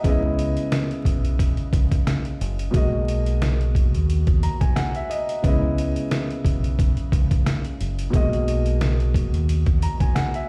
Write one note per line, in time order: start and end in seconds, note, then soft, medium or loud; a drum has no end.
0.03 0.56 C#2 loud
0.03 2.69 C#3 medium
0.03 2.70 G#3 medium
0.03 2.71 B3 medium
0.03 2.71 E4 medium
0.03 kick loud
0.03 closed hi-hat medium
0.09 2.72 D#5 medium
0.39 closed hi-hat medium
0.57 closed hi-hat soft
0.72 snare loud
0.72 closed hi-hat loud
0.91 closed hi-hat soft
1.05 1.57 B1 medium
1.05 kick medium
1.05 closed hi-hat medium
1.25 closed hi-hat soft
1.39 kick medium
1.39 closed hi-hat medium
1.57 closed hi-hat soft
1.73 1.99 C#2 medium
1.73 kick loud
1.73 closed hi-hat medium
1.91 kick medium
1.91 closed hi-hat medium
2.07 snare loud
2.07 closed hi-hat medium
2.25 closed hi-hat soft
2.41 2.67 F#1 medium
2.41 closed hi-hat medium
2.59 closed hi-hat medium
2.71 3.95 B1 loud
2.71 5.38 B2 medium
2.71 5.39 G#3 medium
2.71 5.40 A#3 medium
2.71 5.40 F#4 medium
2.71 kick loud
2.71 closed hi-hat medium
2.76 5.08 D#5 medium
3.08 closed hi-hat medium
3.26 closed hi-hat medium
3.42 snare loud
3.42 closed hi-hat loud
3.61 closed hi-hat soft
3.75 kick medium
3.75 closed hi-hat medium
3.95 4.46 D#2 medium
3.95 closed hi-hat soft
4.10 closed hi-hat medium
4.27 kick medium
4.27 closed hi-hat soft
4.43 4.60 A#5 medium
4.43 closed hi-hat medium
4.61 4.73 B1 medium
4.61 4.75 G#5 medium
4.61 kick medium
4.61 closed hi-hat soft
4.76 4.93 F#5 medium
4.76 snare loud
4.76 closed hi-hat medium
4.95 5.09 E5 medium
4.95 closed hi-hat soft
5.10 5.41 D#5 medium
5.10 closed hi-hat medium
5.29 closed hi-hat medium
5.42 5.96 C#2 loud
5.42 8.09 C#3 medium
5.42 8.09 G#3 medium
5.42 8.10 B3 medium
5.42 kick loud
5.42 closed hi-hat medium
5.46 8.11 E4 medium
5.46 8.11 D#5 medium
5.78 closed hi-hat medium
5.96 closed hi-hat medium
6.11 snare loud
6.11 closed hi-hat medium
6.31 closed hi-hat soft
6.45 6.97 B1 medium
6.45 kick medium
6.45 closed hi-hat medium
6.64 closed hi-hat soft
6.79 kick medium
6.79 closed hi-hat medium
6.97 closed hi-hat soft
7.12 7.38 C#2 medium
7.12 kick medium
7.12 closed hi-hat medium
7.31 kick medium
7.31 closed hi-hat soft
7.46 snare loud
7.46 closed hi-hat medium
7.65 closed hi-hat soft
7.81 8.06 F#1 medium
7.81 closed hi-hat medium
7.99 closed hi-hat medium
8.10 9.34 B1 loud
8.10 10.49 B2 medium
8.10 10.49 G#3 medium
8.10 10.49 A#3 medium
8.10 kick loud
8.10 closed hi-hat medium
8.14 10.49 F#4 medium
8.14 10.48 D#5 medium
8.33 closed hi-hat soft
8.48 closed hi-hat medium
8.66 closed hi-hat soft
8.81 snare loud
8.81 closed hi-hat loud
9.00 closed hi-hat soft
9.14 kick medium
9.14 closed hi-hat medium
9.34 9.85 D#2 medium
9.34 closed hi-hat soft
9.49 closed hi-hat medium
9.66 kick medium
9.66 closed hi-hat soft
9.82 10.00 A#5 medium
9.82 closed hi-hat medium
10.00 10.12 B1 medium
10.00 10.14 G#5 medium
10.00 kick medium
10.00 closed hi-hat medium
10.15 10.33 F#5 medium
10.15 snare loud
10.15 closed hi-hat medium
10.34 10.49 E5 medium
10.34 closed hi-hat soft